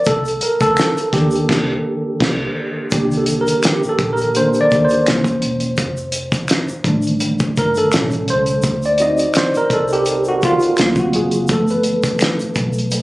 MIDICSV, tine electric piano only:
0, 0, Header, 1, 2, 480
1, 0, Start_track
1, 0, Tempo, 714286
1, 42, Time_signature, 4, 2, 24, 8
1, 8749, End_track
2, 0, Start_track
2, 0, Title_t, "Tine electric piano"
2, 0, Program_c, 0, 4
2, 0, Control_c, 0, 64, 127
2, 45, Note_on_c, 0, 69, 94
2, 51, Control_c, 0, 64, 0
2, 189, Control_c, 0, 64, 127
2, 267, Note_off_c, 0, 69, 0
2, 287, Note_on_c, 0, 70, 80
2, 414, Note_on_c, 0, 69, 83
2, 420, Note_off_c, 0, 70, 0
2, 763, Note_on_c, 0, 67, 83
2, 769, Note_on_c, 0, 51, 54
2, 772, Note_on_c, 0, 58, 49
2, 773, Note_off_c, 0, 69, 0
2, 777, Note_on_c, 0, 62, 58
2, 986, Note_off_c, 0, 67, 0
2, 994, Note_off_c, 0, 51, 0
2, 995, Note_off_c, 0, 58, 0
2, 998, Note_off_c, 0, 62, 0
2, 1969, Note_on_c, 0, 51, 49
2, 1970, Control_c, 0, 64, 0
2, 1973, Note_on_c, 0, 58, 40
2, 1974, Note_on_c, 0, 67, 65
2, 1978, Note_on_c, 0, 62, 57
2, 2071, Control_c, 0, 64, 127
2, 2117, Note_off_c, 0, 67, 0
2, 2133, Note_on_c, 0, 69, 59
2, 2292, Note_off_c, 0, 69, 0
2, 2292, Note_on_c, 0, 70, 78
2, 2452, Note_off_c, 0, 70, 0
2, 2455, Note_on_c, 0, 67, 69
2, 2598, Note_off_c, 0, 67, 0
2, 2615, Note_on_c, 0, 69, 78
2, 2774, Note_off_c, 0, 69, 0
2, 2774, Note_on_c, 0, 70, 85
2, 2843, Note_off_c, 0, 70, 0
2, 2923, Note_off_c, 0, 51, 0
2, 2925, Note_off_c, 0, 58, 0
2, 2927, Note_off_c, 0, 62, 0
2, 2931, Note_on_c, 0, 51, 45
2, 2933, Note_on_c, 0, 58, 40
2, 2934, Note_on_c, 0, 72, 92
2, 2935, Note_on_c, 0, 62, 53
2, 3003, Note_off_c, 0, 72, 0
2, 3096, Note_on_c, 0, 74, 106
2, 3143, Note_off_c, 0, 51, 0
2, 3144, Note_off_c, 0, 58, 0
2, 3146, Note_off_c, 0, 62, 0
2, 3254, Note_off_c, 0, 74, 0
2, 3256, Note_on_c, 0, 72, 88
2, 3409, Control_c, 0, 64, 0
2, 3412, Note_on_c, 0, 52, 51
2, 3417, Note_on_c, 0, 58, 47
2, 3422, Note_on_c, 0, 61, 53
2, 3532, Control_c, 0, 64, 127
2, 3864, Note_off_c, 0, 52, 0
2, 3866, Note_off_c, 0, 58, 0
2, 3869, Note_off_c, 0, 61, 0
2, 3891, Control_c, 0, 64, 0
2, 3998, Control_c, 0, 64, 127
2, 4423, Note_off_c, 0, 72, 0
2, 4613, Note_on_c, 0, 51, 57
2, 4615, Note_on_c, 0, 55, 51
2, 4617, Note_on_c, 0, 57, 46
2, 4620, Note_on_c, 0, 62, 65
2, 5099, Note_on_c, 0, 70, 91
2, 5225, Note_off_c, 0, 70, 0
2, 5227, Note_on_c, 0, 69, 82
2, 5301, Note_off_c, 0, 51, 0
2, 5302, Note_off_c, 0, 55, 0
2, 5303, Note_off_c, 0, 57, 0
2, 5304, Note_off_c, 0, 62, 0
2, 5331, Control_c, 0, 64, 0
2, 5331, Note_on_c, 0, 55, 52
2, 5337, Note_on_c, 0, 47, 44
2, 5340, Note_on_c, 0, 61, 58
2, 5459, Control_c, 0, 64, 127
2, 5579, Note_on_c, 0, 72, 95
2, 5580, Note_off_c, 0, 69, 0
2, 5783, Note_off_c, 0, 55, 0
2, 5786, Note_off_c, 0, 47, 0
2, 5788, Note_off_c, 0, 61, 0
2, 5811, Control_c, 0, 64, 0
2, 5920, Control_c, 0, 64, 127
2, 5951, Note_on_c, 0, 74, 78
2, 5952, Note_off_c, 0, 72, 0
2, 6048, Note_on_c, 0, 66, 55
2, 6054, Note_on_c, 0, 60, 44
2, 6055, Note_off_c, 0, 74, 0
2, 6058, Note_on_c, 0, 63, 54
2, 6059, Note_on_c, 0, 75, 93
2, 6298, Note_off_c, 0, 75, 0
2, 6299, Note_on_c, 0, 72, 91
2, 6425, Note_off_c, 0, 72, 0
2, 6432, Note_on_c, 0, 70, 94
2, 6535, Note_off_c, 0, 70, 0
2, 6540, Note_on_c, 0, 69, 86
2, 6666, Note_off_c, 0, 69, 0
2, 6671, Note_on_c, 0, 67, 85
2, 6903, Note_off_c, 0, 66, 0
2, 6909, Note_off_c, 0, 67, 0
2, 6911, Note_on_c, 0, 66, 86
2, 6956, Note_off_c, 0, 66, 0
2, 7021, Note_on_c, 0, 65, 93
2, 7222, Note_off_c, 0, 60, 0
2, 7223, Note_off_c, 0, 63, 0
2, 7250, Note_on_c, 0, 54, 54
2, 7251, Control_c, 0, 64, 0
2, 7254, Note_on_c, 0, 58, 49
2, 7258, Note_on_c, 0, 60, 57
2, 7376, Control_c, 0, 64, 127
2, 7388, Note_on_c, 0, 66, 81
2, 7393, Note_off_c, 0, 65, 0
2, 7493, Note_off_c, 0, 66, 0
2, 7497, Note_on_c, 0, 68, 72
2, 7574, Note_off_c, 0, 54, 0
2, 7576, Note_off_c, 0, 58, 0
2, 7578, Note_off_c, 0, 60, 0
2, 7713, Note_off_c, 0, 68, 0
2, 7731, Control_c, 0, 64, 0
2, 7732, Note_on_c, 0, 53, 48
2, 7736, Note_on_c, 0, 57, 45
2, 7738, Note_on_c, 0, 59, 56
2, 7739, Note_on_c, 0, 69, 79
2, 7831, Control_c, 0, 64, 127
2, 7865, Note_off_c, 0, 69, 0
2, 7868, Note_on_c, 0, 71, 64
2, 8554, Note_off_c, 0, 71, 0
2, 8749, Note_off_c, 0, 53, 0
2, 8749, Note_off_c, 0, 57, 0
2, 8749, Note_off_c, 0, 59, 0
2, 8749, End_track
0, 0, End_of_file